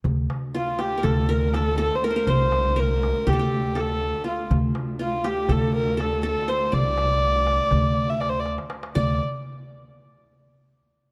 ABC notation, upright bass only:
X:1
M:9/8
L:1/8
Q:3/8=81
K:none
V:1 name="Upright bass" clef=bass
D,, z3 D,,4 z | C,,4 D,,4 z | D,, z3 D,,4 z | C,,4 D,,4 z |
D,, z8 |]